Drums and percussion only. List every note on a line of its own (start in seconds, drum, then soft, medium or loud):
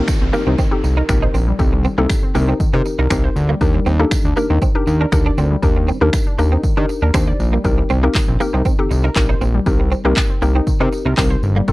0.08 finger snap loud
0.08 kick loud
0.08 tambourine medium
0.34 tambourine soft
0.58 kick loud
0.58 tambourine soft
0.84 tambourine soft
1.09 finger snap loud
1.09 kick loud
1.09 tambourine medium
1.34 tambourine soft
1.59 kick loud
1.59 tambourine soft
1.85 tambourine soft
2.10 finger snap loud
2.10 kick loud
2.10 tambourine medium
2.35 tambourine soft
2.60 kick loud
2.60 tambourine medium
2.86 tambourine soft
3.10 finger snap loud
3.10 kick loud
3.10 tambourine medium
3.36 tambourine soft
3.61 kick loud
3.61 tambourine soft
3.86 tambourine soft
4.11 finger snap loud
4.11 kick loud
4.11 tambourine medium
4.37 tambourine soft
4.62 kick loud
4.62 tambourine medium
4.87 tambourine medium
5.12 finger snap loud
5.12 kick loud
5.12 tambourine medium
5.38 tambourine soft
5.63 kick loud
5.63 tambourine soft
5.88 tambourine soft
6.13 finger snap loud
6.13 kick loud
6.13 tambourine medium
6.39 tambourine soft
6.64 kick loud
6.64 tambourine soft
6.89 tambourine soft
7.14 finger snap loud
7.14 kick loud
7.14 tambourine medium
7.40 tambourine soft
7.65 kick loud
7.65 tambourine soft
7.90 tambourine soft
8.15 kick loud
8.15 clap loud
8.15 tambourine medium
8.40 tambourine soft
8.65 kick loud
8.65 tambourine soft
8.91 tambourine medium
9.16 kick loud
9.16 clap loud
9.16 tambourine medium
9.41 tambourine soft
9.66 kick loud
9.66 tambourine soft
9.92 tambourine soft
10.16 kick loud
10.16 clap loud
10.16 tambourine medium
10.42 tambourine soft
10.67 kick loud
10.67 tambourine medium
10.92 tambourine soft
11.17 kick loud
11.17 clap loud
11.17 tambourine medium
11.43 tambourine soft
11.68 kick loud
11.68 tambourine soft